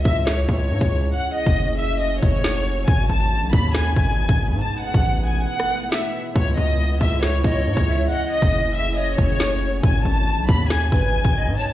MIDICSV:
0, 0, Header, 1, 6, 480
1, 0, Start_track
1, 0, Tempo, 434783
1, 1256, Time_signature, 4, 2, 24, 8
1, 12950, End_track
2, 0, Start_track
2, 0, Title_t, "Violin section"
2, 0, Program_c, 0, 48
2, 56, Note_on_c, 0, 76, 89
2, 272, Note_off_c, 0, 76, 0
2, 297, Note_on_c, 0, 73, 85
2, 512, Note_off_c, 0, 73, 0
2, 539, Note_on_c, 0, 73, 81
2, 1215, Note_off_c, 0, 73, 0
2, 1256, Note_on_c, 0, 78, 93
2, 1472, Note_off_c, 0, 78, 0
2, 1497, Note_on_c, 0, 75, 95
2, 1948, Note_off_c, 0, 75, 0
2, 1975, Note_on_c, 0, 76, 92
2, 2191, Note_off_c, 0, 76, 0
2, 2214, Note_on_c, 0, 75, 88
2, 2431, Note_off_c, 0, 75, 0
2, 2456, Note_on_c, 0, 73, 91
2, 3133, Note_off_c, 0, 73, 0
2, 3175, Note_on_c, 0, 80, 93
2, 3391, Note_off_c, 0, 80, 0
2, 3416, Note_on_c, 0, 81, 90
2, 3867, Note_off_c, 0, 81, 0
2, 3898, Note_on_c, 0, 83, 92
2, 4113, Note_off_c, 0, 83, 0
2, 4134, Note_on_c, 0, 80, 89
2, 4351, Note_off_c, 0, 80, 0
2, 4375, Note_on_c, 0, 80, 91
2, 5053, Note_off_c, 0, 80, 0
2, 5096, Note_on_c, 0, 81, 81
2, 5312, Note_off_c, 0, 81, 0
2, 5336, Note_on_c, 0, 78, 93
2, 5787, Note_off_c, 0, 78, 0
2, 5815, Note_on_c, 0, 80, 77
2, 6031, Note_off_c, 0, 80, 0
2, 6056, Note_on_c, 0, 78, 106
2, 6508, Note_off_c, 0, 78, 0
2, 6538, Note_on_c, 0, 76, 79
2, 6753, Note_off_c, 0, 76, 0
2, 7015, Note_on_c, 0, 73, 92
2, 7231, Note_off_c, 0, 73, 0
2, 7255, Note_on_c, 0, 75, 87
2, 7707, Note_off_c, 0, 75, 0
2, 7736, Note_on_c, 0, 76, 85
2, 7952, Note_off_c, 0, 76, 0
2, 7977, Note_on_c, 0, 73, 84
2, 8192, Note_off_c, 0, 73, 0
2, 8217, Note_on_c, 0, 73, 83
2, 8893, Note_off_c, 0, 73, 0
2, 8937, Note_on_c, 0, 78, 90
2, 9152, Note_off_c, 0, 78, 0
2, 9178, Note_on_c, 0, 75, 92
2, 9628, Note_off_c, 0, 75, 0
2, 9656, Note_on_c, 0, 76, 90
2, 9871, Note_off_c, 0, 76, 0
2, 9895, Note_on_c, 0, 75, 88
2, 10111, Note_off_c, 0, 75, 0
2, 10136, Note_on_c, 0, 73, 91
2, 10813, Note_off_c, 0, 73, 0
2, 10857, Note_on_c, 0, 80, 91
2, 11072, Note_off_c, 0, 80, 0
2, 11098, Note_on_c, 0, 81, 90
2, 11548, Note_off_c, 0, 81, 0
2, 11579, Note_on_c, 0, 83, 93
2, 11793, Note_off_c, 0, 83, 0
2, 11812, Note_on_c, 0, 80, 93
2, 12030, Note_off_c, 0, 80, 0
2, 12055, Note_on_c, 0, 80, 91
2, 12732, Note_off_c, 0, 80, 0
2, 12775, Note_on_c, 0, 81, 76
2, 12950, Note_off_c, 0, 81, 0
2, 12950, End_track
3, 0, Start_track
3, 0, Title_t, "Pan flute"
3, 0, Program_c, 1, 75
3, 8216, Note_on_c, 1, 75, 94
3, 8667, Note_off_c, 1, 75, 0
3, 8697, Note_on_c, 1, 76, 88
3, 8925, Note_off_c, 1, 76, 0
3, 8935, Note_on_c, 1, 75, 108
3, 9387, Note_off_c, 1, 75, 0
3, 9897, Note_on_c, 1, 73, 98
3, 10813, Note_off_c, 1, 73, 0
3, 12055, Note_on_c, 1, 71, 85
3, 12507, Note_off_c, 1, 71, 0
3, 12540, Note_on_c, 1, 75, 79
3, 12766, Note_off_c, 1, 75, 0
3, 12777, Note_on_c, 1, 73, 103
3, 12950, Note_off_c, 1, 73, 0
3, 12950, End_track
4, 0, Start_track
4, 0, Title_t, "Ambient pad"
4, 0, Program_c, 2, 92
4, 0, Note_on_c, 2, 49, 85
4, 0, Note_on_c, 2, 61, 76
4, 0, Note_on_c, 2, 64, 77
4, 0, Note_on_c, 2, 68, 91
4, 1236, Note_off_c, 2, 49, 0
4, 1236, Note_off_c, 2, 64, 0
4, 1236, Note_off_c, 2, 68, 0
4, 1255, Note_on_c, 2, 66, 92
4, 1256, Note_on_c, 2, 57, 83
4, 3137, Note_off_c, 2, 61, 0
4, 3157, Note_off_c, 2, 57, 0
4, 3157, Note_off_c, 2, 66, 0
4, 3176, Note_on_c, 2, 56, 85
4, 3176, Note_on_c, 2, 63, 93
4, 3178, Note_on_c, 2, 59, 76
4, 5077, Note_off_c, 2, 56, 0
4, 5077, Note_off_c, 2, 63, 0
4, 5096, Note_on_c, 2, 57, 82
4, 5097, Note_on_c, 2, 64, 89
4, 6979, Note_off_c, 2, 59, 0
4, 6997, Note_off_c, 2, 57, 0
4, 6997, Note_off_c, 2, 64, 0
4, 7015, Note_on_c, 2, 49, 86
4, 7015, Note_on_c, 2, 64, 77
4, 7015, Note_on_c, 2, 68, 92
4, 7016, Note_on_c, 2, 61, 76
4, 8916, Note_off_c, 2, 64, 0
4, 8917, Note_off_c, 2, 49, 0
4, 8917, Note_off_c, 2, 68, 0
4, 8937, Note_on_c, 2, 57, 85
4, 8938, Note_on_c, 2, 66, 95
4, 10818, Note_off_c, 2, 61, 0
4, 10838, Note_off_c, 2, 57, 0
4, 10838, Note_off_c, 2, 66, 0
4, 10857, Note_on_c, 2, 56, 82
4, 10857, Note_on_c, 2, 63, 97
4, 10858, Note_on_c, 2, 59, 77
4, 12758, Note_off_c, 2, 56, 0
4, 12758, Note_off_c, 2, 63, 0
4, 12950, Note_off_c, 2, 59, 0
4, 12950, End_track
5, 0, Start_track
5, 0, Title_t, "808-style bass"
5, 0, Program_c, 3, 38
5, 58, Note_on_c, 3, 37, 103
5, 518, Note_off_c, 3, 37, 0
5, 537, Note_on_c, 3, 37, 112
5, 776, Note_on_c, 3, 44, 102
5, 793, Note_off_c, 3, 37, 0
5, 890, Note_off_c, 3, 44, 0
5, 895, Note_on_c, 3, 37, 104
5, 1242, Note_off_c, 3, 37, 0
5, 1616, Note_on_c, 3, 30, 100
5, 2423, Note_off_c, 3, 30, 0
5, 2457, Note_on_c, 3, 30, 106
5, 3148, Note_off_c, 3, 30, 0
5, 3177, Note_on_c, 3, 32, 110
5, 3407, Note_off_c, 3, 32, 0
5, 3417, Note_on_c, 3, 32, 110
5, 3778, Note_on_c, 3, 35, 96
5, 3794, Note_off_c, 3, 32, 0
5, 3891, Note_off_c, 3, 35, 0
5, 3897, Note_on_c, 3, 39, 105
5, 4358, Note_off_c, 3, 39, 0
5, 4376, Note_on_c, 3, 32, 108
5, 4722, Note_off_c, 3, 32, 0
5, 4735, Note_on_c, 3, 32, 107
5, 4977, Note_on_c, 3, 44, 97
5, 4993, Note_off_c, 3, 32, 0
5, 5091, Note_off_c, 3, 44, 0
5, 5457, Note_on_c, 3, 33, 101
5, 6033, Note_off_c, 3, 33, 0
5, 7017, Note_on_c, 3, 37, 108
5, 7247, Note_off_c, 3, 37, 0
5, 7257, Note_on_c, 3, 37, 102
5, 7718, Note_off_c, 3, 37, 0
5, 7738, Note_on_c, 3, 37, 105
5, 8198, Note_off_c, 3, 37, 0
5, 8218, Note_on_c, 3, 37, 110
5, 8458, Note_on_c, 3, 44, 102
5, 8474, Note_off_c, 3, 37, 0
5, 8571, Note_off_c, 3, 44, 0
5, 8576, Note_on_c, 3, 37, 100
5, 8922, Note_off_c, 3, 37, 0
5, 9298, Note_on_c, 3, 30, 101
5, 10104, Note_off_c, 3, 30, 0
5, 10138, Note_on_c, 3, 30, 105
5, 10828, Note_off_c, 3, 30, 0
5, 10857, Note_on_c, 3, 32, 107
5, 11087, Note_off_c, 3, 32, 0
5, 11098, Note_on_c, 3, 32, 108
5, 11457, Note_on_c, 3, 35, 99
5, 11474, Note_off_c, 3, 32, 0
5, 11571, Note_off_c, 3, 35, 0
5, 11577, Note_on_c, 3, 39, 106
5, 12038, Note_off_c, 3, 39, 0
5, 12057, Note_on_c, 3, 32, 109
5, 12402, Note_off_c, 3, 32, 0
5, 12416, Note_on_c, 3, 32, 108
5, 12657, Note_on_c, 3, 44, 97
5, 12673, Note_off_c, 3, 32, 0
5, 12771, Note_off_c, 3, 44, 0
5, 12950, End_track
6, 0, Start_track
6, 0, Title_t, "Drums"
6, 57, Note_on_c, 9, 42, 96
6, 58, Note_on_c, 9, 36, 107
6, 168, Note_off_c, 9, 36, 0
6, 168, Note_off_c, 9, 42, 0
6, 177, Note_on_c, 9, 42, 86
6, 287, Note_off_c, 9, 42, 0
6, 297, Note_on_c, 9, 42, 74
6, 298, Note_on_c, 9, 38, 113
6, 377, Note_off_c, 9, 42, 0
6, 377, Note_on_c, 9, 42, 67
6, 408, Note_off_c, 9, 38, 0
6, 457, Note_off_c, 9, 42, 0
6, 457, Note_on_c, 9, 42, 59
6, 537, Note_off_c, 9, 42, 0
6, 537, Note_on_c, 9, 36, 90
6, 537, Note_on_c, 9, 42, 51
6, 617, Note_off_c, 9, 42, 0
6, 617, Note_on_c, 9, 42, 46
6, 647, Note_off_c, 9, 36, 0
6, 697, Note_off_c, 9, 42, 0
6, 697, Note_on_c, 9, 42, 42
6, 807, Note_off_c, 9, 42, 0
6, 895, Note_on_c, 9, 36, 97
6, 896, Note_on_c, 9, 42, 82
6, 1006, Note_off_c, 9, 36, 0
6, 1006, Note_off_c, 9, 42, 0
6, 1256, Note_on_c, 9, 42, 86
6, 1366, Note_off_c, 9, 42, 0
6, 1616, Note_on_c, 9, 36, 104
6, 1727, Note_off_c, 9, 36, 0
6, 1737, Note_on_c, 9, 42, 75
6, 1847, Note_off_c, 9, 42, 0
6, 1976, Note_on_c, 9, 42, 93
6, 2086, Note_off_c, 9, 42, 0
6, 2457, Note_on_c, 9, 36, 92
6, 2457, Note_on_c, 9, 42, 85
6, 2567, Note_off_c, 9, 36, 0
6, 2567, Note_off_c, 9, 42, 0
6, 2696, Note_on_c, 9, 42, 73
6, 2697, Note_on_c, 9, 38, 115
6, 2807, Note_off_c, 9, 38, 0
6, 2807, Note_off_c, 9, 42, 0
6, 2936, Note_on_c, 9, 46, 58
6, 3047, Note_off_c, 9, 46, 0
6, 3176, Note_on_c, 9, 36, 123
6, 3176, Note_on_c, 9, 42, 88
6, 3286, Note_off_c, 9, 42, 0
6, 3287, Note_off_c, 9, 36, 0
6, 3536, Note_on_c, 9, 42, 90
6, 3646, Note_off_c, 9, 42, 0
6, 3896, Note_on_c, 9, 42, 97
6, 3897, Note_on_c, 9, 36, 107
6, 4006, Note_off_c, 9, 42, 0
6, 4008, Note_off_c, 9, 36, 0
6, 4016, Note_on_c, 9, 42, 89
6, 4126, Note_off_c, 9, 42, 0
6, 4135, Note_on_c, 9, 38, 116
6, 4135, Note_on_c, 9, 42, 76
6, 4215, Note_off_c, 9, 42, 0
6, 4215, Note_on_c, 9, 42, 67
6, 4246, Note_off_c, 9, 38, 0
6, 4296, Note_off_c, 9, 42, 0
6, 4296, Note_on_c, 9, 42, 59
6, 4375, Note_off_c, 9, 42, 0
6, 4375, Note_on_c, 9, 42, 54
6, 4376, Note_on_c, 9, 36, 88
6, 4456, Note_off_c, 9, 42, 0
6, 4456, Note_on_c, 9, 42, 47
6, 4487, Note_off_c, 9, 36, 0
6, 4535, Note_off_c, 9, 42, 0
6, 4535, Note_on_c, 9, 42, 42
6, 4646, Note_off_c, 9, 42, 0
6, 4735, Note_on_c, 9, 36, 98
6, 4735, Note_on_c, 9, 42, 81
6, 4845, Note_off_c, 9, 36, 0
6, 4846, Note_off_c, 9, 42, 0
6, 5096, Note_on_c, 9, 42, 87
6, 5207, Note_off_c, 9, 42, 0
6, 5456, Note_on_c, 9, 36, 104
6, 5567, Note_off_c, 9, 36, 0
6, 5577, Note_on_c, 9, 42, 74
6, 5687, Note_off_c, 9, 42, 0
6, 5817, Note_on_c, 9, 42, 91
6, 5928, Note_off_c, 9, 42, 0
6, 6178, Note_on_c, 9, 37, 94
6, 6289, Note_off_c, 9, 37, 0
6, 6297, Note_on_c, 9, 42, 82
6, 6407, Note_off_c, 9, 42, 0
6, 6536, Note_on_c, 9, 42, 77
6, 6537, Note_on_c, 9, 38, 113
6, 6647, Note_off_c, 9, 38, 0
6, 6647, Note_off_c, 9, 42, 0
6, 6777, Note_on_c, 9, 42, 74
6, 6887, Note_off_c, 9, 42, 0
6, 7017, Note_on_c, 9, 36, 122
6, 7017, Note_on_c, 9, 42, 88
6, 7127, Note_off_c, 9, 42, 0
6, 7128, Note_off_c, 9, 36, 0
6, 7377, Note_on_c, 9, 42, 86
6, 7487, Note_off_c, 9, 42, 0
6, 7737, Note_on_c, 9, 42, 97
6, 7738, Note_on_c, 9, 36, 102
6, 7847, Note_off_c, 9, 42, 0
6, 7848, Note_off_c, 9, 36, 0
6, 7857, Note_on_c, 9, 42, 87
6, 7968, Note_off_c, 9, 42, 0
6, 7978, Note_on_c, 9, 38, 110
6, 7978, Note_on_c, 9, 42, 75
6, 8058, Note_off_c, 9, 42, 0
6, 8058, Note_on_c, 9, 42, 68
6, 8088, Note_off_c, 9, 38, 0
6, 8138, Note_off_c, 9, 42, 0
6, 8138, Note_on_c, 9, 42, 59
6, 8218, Note_off_c, 9, 42, 0
6, 8218, Note_on_c, 9, 36, 91
6, 8218, Note_on_c, 9, 42, 52
6, 8298, Note_off_c, 9, 42, 0
6, 8298, Note_on_c, 9, 42, 46
6, 8328, Note_off_c, 9, 36, 0
6, 8378, Note_off_c, 9, 42, 0
6, 8378, Note_on_c, 9, 42, 43
6, 8489, Note_off_c, 9, 42, 0
6, 8576, Note_on_c, 9, 36, 98
6, 8578, Note_on_c, 9, 42, 81
6, 8687, Note_off_c, 9, 36, 0
6, 8688, Note_off_c, 9, 42, 0
6, 8937, Note_on_c, 9, 42, 89
6, 9048, Note_off_c, 9, 42, 0
6, 9297, Note_on_c, 9, 36, 103
6, 9408, Note_off_c, 9, 36, 0
6, 9418, Note_on_c, 9, 42, 77
6, 9528, Note_off_c, 9, 42, 0
6, 9657, Note_on_c, 9, 42, 95
6, 9768, Note_off_c, 9, 42, 0
6, 10137, Note_on_c, 9, 36, 90
6, 10137, Note_on_c, 9, 42, 83
6, 10248, Note_off_c, 9, 36, 0
6, 10248, Note_off_c, 9, 42, 0
6, 10377, Note_on_c, 9, 42, 76
6, 10378, Note_on_c, 9, 38, 116
6, 10488, Note_off_c, 9, 38, 0
6, 10488, Note_off_c, 9, 42, 0
6, 10618, Note_on_c, 9, 46, 57
6, 10728, Note_off_c, 9, 46, 0
6, 10857, Note_on_c, 9, 36, 123
6, 10857, Note_on_c, 9, 42, 90
6, 10967, Note_off_c, 9, 42, 0
6, 10968, Note_off_c, 9, 36, 0
6, 11217, Note_on_c, 9, 42, 86
6, 11327, Note_off_c, 9, 42, 0
6, 11577, Note_on_c, 9, 42, 93
6, 11578, Note_on_c, 9, 36, 104
6, 11687, Note_off_c, 9, 42, 0
6, 11688, Note_off_c, 9, 36, 0
6, 11697, Note_on_c, 9, 42, 88
6, 11808, Note_off_c, 9, 42, 0
6, 11817, Note_on_c, 9, 38, 113
6, 11817, Note_on_c, 9, 42, 72
6, 11897, Note_off_c, 9, 42, 0
6, 11897, Note_on_c, 9, 42, 65
6, 11927, Note_off_c, 9, 38, 0
6, 11977, Note_off_c, 9, 42, 0
6, 11977, Note_on_c, 9, 42, 60
6, 12057, Note_off_c, 9, 42, 0
6, 12057, Note_on_c, 9, 36, 90
6, 12057, Note_on_c, 9, 42, 54
6, 12137, Note_off_c, 9, 42, 0
6, 12137, Note_on_c, 9, 42, 46
6, 12168, Note_off_c, 9, 36, 0
6, 12217, Note_off_c, 9, 42, 0
6, 12217, Note_on_c, 9, 42, 43
6, 12327, Note_off_c, 9, 42, 0
6, 12416, Note_on_c, 9, 36, 96
6, 12416, Note_on_c, 9, 42, 81
6, 12526, Note_off_c, 9, 36, 0
6, 12527, Note_off_c, 9, 42, 0
6, 12777, Note_on_c, 9, 42, 86
6, 12887, Note_off_c, 9, 42, 0
6, 12950, End_track
0, 0, End_of_file